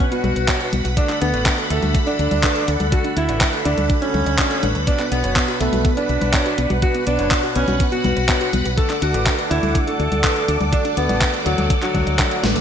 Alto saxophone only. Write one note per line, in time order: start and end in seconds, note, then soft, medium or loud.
0.12 0.87 F#4 loud
0.97 1.17 D4 loud
1.21 1.60 B3 loud
1.70 1.99 A3 loud
2.07 2.82 D4 loud
2.92 3.12 F#4 loud
3.17 3.56 E4 loud
3.65 3.95 D4 loud
4.02 4.70 C#4 loud
4.87 5.07 D4 loud
5.12 5.51 B3 loud
5.61 5.90 A3 loud
5.97 6.73 D4 loud
6.83 7.02 F#4 loud
7.07 7.46 D4 loud
7.56 7.85 C#4 loud
7.92 8.68 F#4 loud
8.78 8.97 A4 loud
9.02 9.41 F#4 loud
9.51 9.80 E4 loud
9.87 10.63 A4 loud
10.73 10.92 D4 loud
10.97 11.36 B3 loud
11.46 11.75 F#3 loud
11.82 12.51 F#3 loud